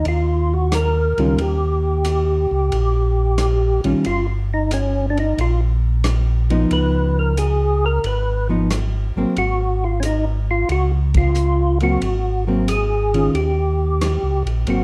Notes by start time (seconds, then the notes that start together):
0.05 D#2 F4, ride
0.54 F#4
0.72 A#4, cross-stick, hi-hat pedal, ride
1.18 C#2 D#3 G3 C#4 F4, ride
1.38 D#2 G4, ride
2.05 hi-hat pedal, ride
2.51 C#2
2.72 A#1, ride
3.38 cross-stick, hi-hat pedal, ride
3.84 A#1 D#3 G3 C#4 F4, ride
4.05 G1 F4, ride
4.54 D#4
4.71 C#4, hi-hat pedal, ride
5.10 D4
5.17 D#4, ride
5.37 A#1 F4, ride
6.04 cross-stick, hi-hat pedal, ride
6.50 F3 B3 D#4, ride
6.70 C#2 B4, ride
7.19 A#4
7.37 G#4, hi-hat pedal, ride
7.86 A#4
8.04 G#1 B4, ride
8.49 F3 B3 D#4
8.70 cross-stick, hi-hat pedal, ride
9.16 G#1 F#3 A#3 C4
9.37 G#1 F#4, ride
9.84 F4
10.00 C#4, hi-hat pedal, ride
10.05 D#4
10.51 F4
10.69 C#2 F#4, ride
11.14 F4, kick, ride
11.35 hi-hat pedal
11.80 F#3 A#3 C4 F#4, ride
12.01 G#1, ride
12.47 F#3 A#3 C4
12.68 G#4, hi-hat pedal, ride
13.14 D#3 C#4 F4, ride
13.34 D#2 G4, ride
14.01 cross-stick, hi-hat pedal, ride
14.23 C#2
14.45 A#1, ride
14.67 G#1 F#3 A#3 C4 F#4, ride